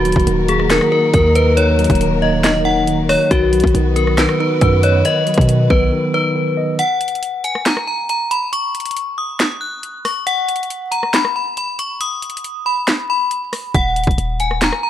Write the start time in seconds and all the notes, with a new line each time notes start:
Already playing: D#1 D#3 A#3 F#4 A#4
0.05 F#3, closed hi-hat
0.12 D#1, kick, closed hi-hat
0.20 closed hi-hat
0.27 D#1 D#3, closed hi-hat
0.48 A#3 G#4, closed hi-hat
0.59 cross-stick
0.70 D#3 A#4, snare, clap, closed hi-hat
0.81 cross-stick
0.92 D#4 A#4
1.14 D#2 D#3 A#4, kick, closed hi-hat
1.35 B4 D#5, closed hi-hat
1.57 D#3 C#5, closed hi-hat
1.79 F#3, closed hi-hat
1.84 closed hi-hat
1.90 D#1, kick, closed hi-hat
1.95 closed hi-hat
2.01 D#3, closed hi-hat
2.22 A#3 D#5
2.44 D#3 D#5, snare, clap, closed hi-hat
2.65 D#4 F#5
2.87 D#3, closed hi-hat
3.09 C#5 D#5, cross-stick, open hi-hat
3.31 B1 D#3 B3 F#4 B4, kick, closed hi-hat
3.53 F#3, closed hi-hat
3.60 B1, kick, closed hi-hat
3.67 closed hi-hat
3.74 B1 D#3, closed hi-hat
3.96 B3 A#4, closed hi-hat
4.07 cross-stick
4.18 D#3 B4, snare, clap, closed hi-hat
4.29 cross-stick
4.40 D#4 B4
4.61 F#2 D#3 B4, kick, closed hi-hat
4.83 C#5 D#5, closed hi-hat
5.05 D#3 D#5, closed hi-hat
5.27 F#3, closed hi-hat
5.34 B2, kick, closed hi-hat
5.41 closed hi-hat
5.48 D#3, closed hi-hat
5.70 B1 B3 B4, kick
5.92 D#3
6.14 D#4 B4
6.36 D#3
6.57 D#5
6.79 F#5, closed hi-hat
7.01 closed hi-hat
7.08 closed hi-hat
7.15 closed hi-hat
7.23 closed hi-hat
7.44 G#5, closed hi-hat
7.55 cross-stick
7.66 A#5, snare, clap, closed hi-hat
7.77 cross-stick
7.87 A#5
8.09 A#5, closed hi-hat
8.31 B5, closed hi-hat
8.53 C#6, closed hi-hat
8.75 closed hi-hat
8.80 closed hi-hat
8.86 closed hi-hat
8.91 closed hi-hat
8.97 closed hi-hat
9.18 D#6
9.40 D#6, snare, clap, closed hi-hat
9.61 F#6
9.83 closed hi-hat
10.05 C#6, cross-stick, open hi-hat
10.27 F#5, closed hi-hat
10.49 closed hi-hat
10.56 closed hi-hat
10.63 closed hi-hat
10.70 closed hi-hat
10.91 A#5, closed hi-hat
11.03 cross-stick
11.14 B5, snare, clap, closed hi-hat
11.25 cross-stick
11.36 B5
11.57 B5, closed hi-hat
11.79 C#6, closed hi-hat
12.01 D#6, closed hi-hat
12.22 closed hi-hat
12.30 closed hi-hat
12.37 closed hi-hat
12.44 closed hi-hat
12.66 B5
12.88 snare, clap, closed hi-hat
13.10 B5
13.31 closed hi-hat
13.53 cross-stick, open hi-hat
13.74 D#1 F#5, kick, closed hi-hat
13.96 closed hi-hat
14.04 D#1, kick, closed hi-hat
14.11 closed hi-hat
14.18 D#1, closed hi-hat
14.40 G#5, closed hi-hat
14.51 cross-stick
14.62 A#5, snare, clap, closed hi-hat
14.72 cross-stick
14.83 A#5